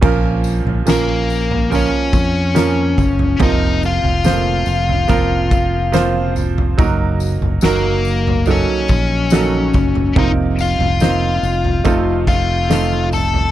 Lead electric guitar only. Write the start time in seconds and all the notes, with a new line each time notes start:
0.89 A#3 A#4
1.75 C#4 C#5
3.43 D#4 D#5
3.85 F4 F5
7.65 A#3 A#4
8.51 C#4 C#5
10.19 D#4 D#5
10.61 F4 F5
12.28 F4 F5
13.13 A4 A5